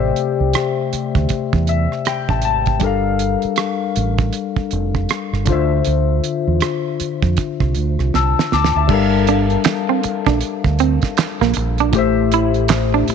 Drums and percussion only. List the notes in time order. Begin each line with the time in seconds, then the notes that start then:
0.16 closed hi-hat
0.53 cross-stick, closed hi-hat
0.93 closed hi-hat
1.15 kick, cross-stick, closed hi-hat
1.29 kick, closed hi-hat
1.53 kick
1.67 closed hi-hat
1.92 cross-stick
2.05 cross-stick, closed hi-hat
2.29 kick
2.42 closed hi-hat
2.66 kick, closed hi-hat
2.80 kick, closed hi-hat
3.19 closed hi-hat
3.42 closed hi-hat
3.56 cross-stick, closed hi-hat
3.96 closed hi-hat
4.18 kick, cross-stick, closed hi-hat
4.33 closed hi-hat
4.56 kick
4.71 closed hi-hat
4.95 kick, cross-stick
5.09 cross-stick, closed hi-hat
5.34 cross-stick
5.46 kick, closed hi-hat
5.85 closed hi-hat
6.24 closed hi-hat
6.60 cross-stick, closed hi-hat
7.00 closed hi-hat
7.22 kick, closed hi-hat
7.37 kick, closed hi-hat
7.60 kick, cross-stick
7.75 closed hi-hat
7.99 cross-stick
8.14 snare
8.39 snare
8.52 snare
8.64 snare
8.89 kick, crash
9.27 closed hi-hat
9.50 closed hi-hat
9.64 snare, clap, closed hi-hat
10.03 closed hi-hat
10.26 kick, snare, closed hi-hat
10.41 closed hi-hat
10.64 kick
10.79 closed hi-hat
11.02 kick, snare, closed hi-hat
11.17 snare, clap, closed hi-hat
11.42 snare
11.54 closed hi-hat
11.78 closed hi-hat
11.93 kick, closed hi-hat
12.32 closed hi-hat
12.54 closed hi-hat
12.68 snare, clap, closed hi-hat
13.08 closed hi-hat